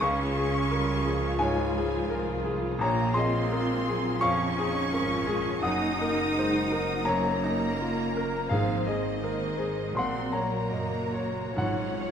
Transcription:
Already playing: G#3 G#4
0.01 C#2 C#4 F4 F5 C#6
0.37 G#4
0.69 G3 F4 A#4
1.04 F3 G#4
1.39 G#2 G#3 C#5 G#5
1.77 G#4
2.10 C2 A#4
2.44 G#4
2.79 A#1 A#3 F4 C#5 A#5
3.14 C4 G#4 D#5 C6
3.50 G#3 A#4
3.84 F#3 G#4
4.20 F2 F3 C#4 F5 C#6
4.58 D#4 G#4
4.92 G#1 F3 F4 A#4
5.27 G#3 G#4
5.61 F#1 F#2 A#3 D#4 F#4 F#5 D#6
5.98 A#3 A#4
6.35 G#3 C5
6.72 F#3 A#4
7.05 F#2 A#3 D#4 A#4 C#5 A#5
7.41 C#4 D#4
7.78 A#3 F4
8.17 A#4
8.49 G#1 G#2 F3 C4 G#4 C5 F5
8.86 D#3 G#4 D#5
9.22 A#3 D#4 A#4 C5
9.58 G#3 G#4
9.95 A#1 A#2 F#3 C4 F#4 A#4 F#5 C6
10.33 A#3 C#5 A#5
10.71 F#1 A#3 F#4 D#5
11.14 C#5
11.56 G#1 G#2 F#3 C#4 F4 C#5 F#5
12.01 C#5

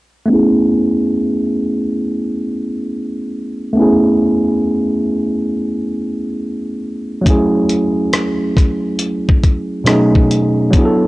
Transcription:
0.26 A3 B3
0.30 C#4 E4
0.34 G#4
3.73 A3 B3
3.77 C#4 E4
3.82 G#4
7.21 F#3 A3
7.26 C#4 E4, kick, closed hi-hat
7.30 G#4
7.69 closed hi-hat
8.13 cross-stick, closed hi-hat
8.57 kick, cross-stick, closed hi-hat
8.99 closed hi-hat
9.29 kick
9.44 kick, closed hi-hat
9.84 B2 F#3 A3 C#4 D#4, cross-stick, closed hi-hat
9.89 G#4
10.15 kick
10.31 closed hi-hat
10.70 F#3 B3 D4, kick, closed hi-hat
10.77 E4 G#4
10.85 A4

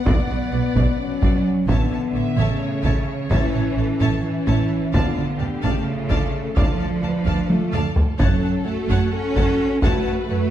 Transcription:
Already playing: F#5
0.05 B1 B2 B3 B4 D5, taiko
0.29 B1 B2 D5
0.52 B1 B2 D5
0.75 B1 B2 D5, taiko
0.98 F#3 C#4
1.22 B1 B2 D5, taiko
1.68 A1 D3 B3 C#5 E5 A5, taiko
1.91 A1 C#5 E5 A5
2.14 A1 C#5 E5 A5
2.37 A1 C#3 A3 C#5 E5 A5, taiko
2.61 C#5
2.83 A1 C#5 E5 A5, taiko
3.07 C#5
3.30 A1 E3 C#4 C#5 E5 A5, taiko
3.54 A1 C#5 E5 A5
3.77 A1 A4 C#5 E5 A5
4.00 A1 C#5 E5 A5, taiko
4.24 E3 C#4 E4
4.47 A1 C#5 E5 A5, taiko
4.93 D2 D3 B3 F4 D5 F5 A5, taiko
5.17 D2 D5 F5 A5
5.39 D2 G4 D5 F5 A5
5.62 D2 C#3 A3 D5 F5 A5, taiko
5.87 F4
6.09 D2 D5 F5 A5, taiko
6.34 A4
6.56 D2 F3 D4 D5 F5 A5, taiko
6.78 D2 D5 F5 A5
7.02 D2 B4 D5 F5 A5
7.25 D2 D5 F5 A5, taiko
7.49 A3 F4 A4, taiko high
7.72 D2 D5 F5 A5, taiko low-mid
7.96 taiko low
8.18 F#2 F#3 C#4 A4 C#5 F#5 A5, taiko
8.42 F#2 C#5 F#5 A5
8.64 F#2 A3 F#4 C#5 F#5 A5
8.88 F#2 C#5 F#5 A5, taiko
9.11 C#4 F#4 A4
9.35 F#2 C#5 F#5 A5, taiko
9.81 F#2 A3 F#4 B4 C#5 F#5 A5, taiko
10.05 F#2 C#5 F#5 A5
10.27 F#2 A3 F#4 C#5 F#5 A5

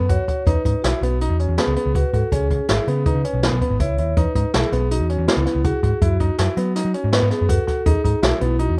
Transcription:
0.00 F#2
0.09 F#4 C#5, kick, closed hi-hat
0.28 F#4, kick, closed hi-hat
0.46 E2 D#4 B4, kick, closed hi-hat
0.65 G#2 D#4, kick, closed hi-hat
0.82 B1 E4 F#4, snare, closed hi-hat
1.01 B1 B3, closed hi-hat
1.21 D#4, closed hi-hat
1.30 E2
1.40 C#4, closed hi-hat
1.48 E2
1.57 B3 G#4, snare, closed hi-hat
1.67 C#2
1.76 B3, closed hi-hat
1.86 C#2
1.95 F#4 B4, kick, closed hi-hat
2.13 G#2 F#4 A4, kick, closed hi-hat
2.32 C#2 C#4 G#4, kick, closed hi-hat
2.51 C#2 C#4, kick, closed hi-hat
2.69 G#1 E4, snare, closed hi-hat
2.87 C#3 B3, closed hi-hat
3.06 D#4 B4, kick, closed hi-hat
3.15 C#3
3.24 C#4, closed hi-hat
3.33 B1
3.43 B3, snare, closed hi-hat
3.52 B1
3.61 B3, kick, closed hi-hat
3.70 G#1
3.80 C#2 E4 C#5, kick, closed hi-hat
3.98 D#2 E4, closed hi-hat
4.17 E2 D#4 B4, kick, closed hi-hat
4.35 G#2 D#4, kick, closed hi-hat
4.54 B1 E4 G#4, snare, closed hi-hat
4.72 B1 B3, closed hi-hat
4.91 D#4 F#4, closed hi-hat
5.00 E2
5.10 C#4, closed hi-hat
5.18 E2
5.28 B3 E4, snare, closed hi-hat
5.37 C#2
5.46 B3, snare, closed hi-hat
5.55 C#2
5.64 F#4 G#4, kick, closed hi-hat
5.83 G#2 F#4, kick, closed hi-hat
6.02 F#2 E4 F#4, kick, closed hi-hat
6.20 F#2 D#4, kick, closed hi-hat
6.38 F#2 E4, snare, closed hi-hat
6.57 F#3 B3, closed hi-hat
6.76 D#4, snare, closed hi-hat
6.85 F#3
6.94 C#4, closed hi-hat
7.04 G#2
7.12 B3 B4, snare, closed hi-hat
7.22 G#2
7.30 B3 G#4, snare, closed hi-hat
7.41 F#2 B4
7.49 F#4 A4, kick, closed hi-hat
7.67 F#4, kick, snare, closed hi-hat
7.86 E2 D#4 G#4, kick, closed hi-hat
8.04 G#2 D#4, kick, closed hi-hat
8.22 B1 E4 F#4, snare, closed hi-hat
8.41 B1 B3 E4, closed hi-hat
8.59 D#4 F#4, closed hi-hat
8.69 E2

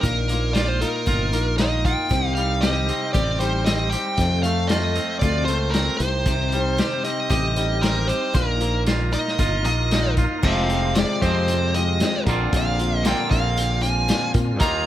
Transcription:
0.01 A#1 A#2 D#3 A#3 A#4, kick, closed hi-hat
0.06 D#4 F4
0.29 A#3 D#4 F4, closed hi-hat
0.53 D#3 A#3 D#4 F4 D5, snare, closed hi-hat
0.68 C5
0.81 A#3 D#4 F4 A#4, closed hi-hat
1.06 G1 A#2 D#3 A#3 D#4 F4, kick, closed hi-hat
1.32 A#1 A#3 D#4 F4, closed hi-hat
1.58 D#3 A#3 D#4 F4 D#5, snare, closed hi-hat
1.85 A#3 D#4 F4 G5, kick, closed hi-hat
2.09 C2 C3 D#3 C4 D#4 G4 C5, kick, closed hi-hat
2.35 G3 C4 D#4 G4 F5, closed hi-hat
2.61 D#3 C4 D#4 G4 D#5, snare, closed hi-hat
2.89 C4 D#4 G4, closed hi-hat
3.13 A1 C3 D#3 C4 D#4 G4 D5, kick, closed hi-hat
3.39 G3 C4 D#4 G4 C5, closed hi-hat
3.65 D#3 C4 D#4 G4 D#5, snare, closed hi-hat
3.90 G4 G5, closed hi-hat
3.94 C4 D#4
4.17 F2 C3 F3 A3 C4 F4 A4 C5, kick, closed hi-hat
4.43 C4 A4 F5, closed hi-hat
4.48 F3 A3
4.67 F4 D#5, snare, closed hi-hat
4.72 F3 A3 C4 A4
4.95 F3 A3 C4 A4, closed hi-hat
5.19 D2 F2 C3 F3 F4 D5, kick, closed hi-hat
5.23 A3 C4 A4
5.45 C#2 A4 C5, closed hi-hat
5.50 F3 A3 C4
5.71 A#4, closed hi-hat
5.75 F3 A3 C4 A4, snare
5.97 C2 C3 C4 D#4 G4 C5, closed hi-hat
6.02 C4 D#4 G4
6.26 C3 D#3 C4 D#4 G4, kick, closed hi-hat
6.52 G3 D#4 G4, closed hi-hat
6.57 C4
6.77 D#3 C4 D#4 G4, snare, closed hi-hat
7.04 C4 D#4 G4 D#5, closed hi-hat
7.30 A1 C3 D#3 C4 D#4 G4 D#5, kick, closed hi-hat
7.56 G3 C4 D#4 G4, closed hi-hat
7.82 D#3 C4 D#4 G4 A#4, snare, closed hi-hat
8.08 C4 D#4 G4 C5, closed hi-hat
8.33 A#1 A#2 D#3 A#3 D#4 F4 A#4, kick, closed hi-hat
8.61 A#3 D#4 F4, closed hi-hat
8.86 D#3 A#3 D#4 F4, snare, closed hi-hat
9.12 A#3 D#4 F4 D#5, closed hi-hat
9.28 snare
9.39 G1 A#2 D#3 A#3 D#4 F4, kick, closed hi-hat
9.65 A#1 A#3 D#4 F4 D#5, closed hi-hat
9.91 D#3 A#3 D#4 F4, snare, closed hi-hat
10.17 A#3 D#4 F4, kick, closed hi-hat
10.43 F1 F2 C3 F3 G#3 C4 F4 G4 F5, kick, crash
10.70 F3 G#3 F4 G4, closed hi-hat
10.95 F2 C3 F3 G#3 F4 G4 D5, snare, closed hi-hat
11.22 F2 C3 F3 G#3 C4 F4 G4 C5, kick, closed hi-hat
11.48 F3 G#3 F4 G4, closed hi-hat
11.74 F3 G#3 F4 G4 D#5, closed hi-hat
12.00 F2 C3 F3 G#3 F4 G4, snare, closed hi-hat
12.26 A#1 A#2 D3 A#3 C4 D4 F4 A#4, kick, closed hi-hat
12.53 A#1 A#2 F3 C4 D4 F4, kick, closed hi-hat
12.57 F5
12.79 C4 D4 F4, closed hi-hat
13.04 A#2 D3 F3 A#3 C4 D4 F4 G5, snare, closed hi-hat
13.30 A#1 C4 D4 F4 F5, kick, closed hi-hat
13.57 F3 C4 D4 F4, closed hi-hat
13.81 C4 D4 F4 G#5, closed hi-hat
14.08 A#2 F3 C4 D4 F4, snare, closed hi-hat
14.34 A#2 C4 D4 F4, kick, closed hi-hat
14.60 D#2 D#3 A#3 D#4 F4 A#4 A#5, kick, closed hi-hat

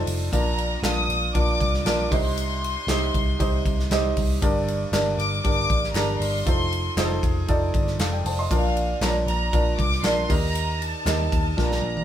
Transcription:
Already playing: D#4 F4 A4 C5 D5 D#5
0.06 F1, open hi-hat, ride
0.32 A#1 A#2 D4 F4 A#4 D5 A#5, kick, hi-hat pedal, ride
0.58 ride
0.83 A#1 D4 F4 A#4 F5 D#6, snare, clap, ride
1.08 A#1, ride
1.34 A#1 D4 F4 A#4 D5 D6, kick, ride
1.60 C2, kick, ride
1.74 snare
1.85 A#1 D4 F4 A#4 D5 D6, snare, clap, ride
2.11 C2 C3 D#4 G4 C5 D#5 C6, kick, open hi-hat, ride
2.37 hi-hat pedal, ride
2.64 ride
2.87 C2 D#4 G4 C5 D#5, snare, clap, ride
3.14 C2, kick, ride
3.39 C2 D#4 G4 C5 D#5, kick, ride
3.66 C2, kick, ride
3.79 snare
3.90 C2 D#4 G4 C5 D#5, snare, clap, ride
4.17 C2, kick, open hi-hat, ride
4.42 G1 G2 D4 G4 A#4 D5, kick, hi-hat pedal, ride
4.68 ride
4.92 G1 D4 G4 A#4 D5, snare, clap, ride
5.18 G1 D6, ride
5.44 G1 D4 G4 A#4 D5 D6, kick, ride
5.70 A1, kick, ride
5.83 snare
5.94 G1 D4 G4 A#4 A#5, snare, clap, ride
5.97 D5, clap
6.19 G1 C6, open hi-hat, ride
6.46 F1 D#4 F4 A4 C5, kick, hi-hat pedal, ride
6.73 ride
6.97 F1 D#4 F4 G#4 C5, snare, clap, ride
7.04 A4
7.23 F1, kick, ride
7.48 F1 D#4 F4 A4 D5, kick, ride
7.74 G1, kick, ride
7.87 snare
7.99 F1 A4 F5, snare, clap, ride
8.13 G5
8.25 F1 C5 A5, open hi-hat, ride
8.39 D#5 C6
8.51 A#1 A#2 D4 F4 A#4 D5 F5, kick, hi-hat pedal, ride
8.77 ride
9.01 A#1 D4 F4 A#4 C#5 A#5, snare, clap, ride
9.09 D5
9.26 A#1 A#5, ride
9.53 A#1 D4 F4 A#4 D5, kick, ride
9.78 C2 D6, kick, ride
9.92 snare
10.03 A#1 D4 F4 A#4 D5 C6, snare, clap, ride
10.29 D#2 D#3 D#4 G4 A#4 D#5 A#5, kick, open hi-hat, ride
10.55 hi-hat pedal, ride
10.82 A5, ride
11.06 D#2 D#4 G4 A#4 D#5, snare, clap, ride
11.32 D#2, kick, ride
11.57 A#1 A#2 D4 F4 A#4 D5 A#5, kick, snare
11.71 snare
11.82 A#1
11.97 high tom

